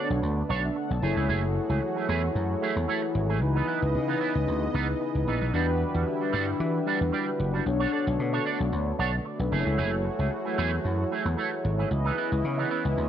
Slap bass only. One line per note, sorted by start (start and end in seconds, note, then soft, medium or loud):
0.10 0.19 B1 medium
0.23 0.41 D2 medium
0.50 0.68 B1 medium
0.91 0.99 B1 medium
1.02 1.12 F#1 loud
1.17 1.30 C#2 medium
1.29 1.57 F#1 loud
1.70 1.78 C#2 medium
2.09 2.27 E2 medium
2.35 2.54 F#2 loud
2.76 2.85 E2 medium
3.15 3.42 G#1 loud
3.42 3.60 C#2 loud
3.82 3.96 C#2 loud
3.95 4.13 C#3 loud
4.35 4.44 C#2 medium
4.48 4.66 D2 loud
4.74 4.93 C#2 medium
5.15 5.24 C#2 medium
5.27 5.37 A#1 medium
5.41 5.50 B1 medium
5.54 5.82 E2 loud
5.95 6.03 E2 loud
6.34 6.52 G2 loud
6.60 6.79 E3 loud
7.01 7.10 E2 medium
7.40 7.58 F#1 loud
7.66 7.85 B1 loud
8.07 8.16 B1 loud
8.19 8.38 B2 loud
8.60 8.69 B1 medium
8.72 8.91 D2 loud
8.99 9.18 B1 medium
9.39 9.48 B1 medium
9.52 9.62 F#1 loud
9.66 9.80 C#2 medium
9.79 10.07 F#1 loud
10.19 10.28 C#2 medium
10.58 10.77 E2 medium
10.85 11.04 F#2 medium
11.25 11.34 E2 medium
11.65 11.83 G#1 medium
11.91 12.10 C#2 loud
12.32 12.41 C#2 loud
12.44 12.63 C#3 loud
12.85 12.94 C#2 loud
12.98 13.09 D2 loud